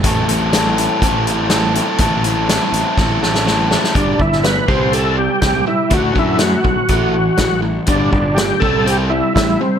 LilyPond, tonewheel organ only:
\new Staff \with { instrumentName = "Tonewheel organ" } { \time 4/4 \key a \dorian \tempo 4 = 122 r1 | r1 | d'8 e'8 b'8 c''8 a'8 g'8 g'8 e'8 | fis'8 e'8 fis'2~ fis'8 r8 |
d'8 d'8 g'8 a'8 g'8 e'8 e'8 c'8 | }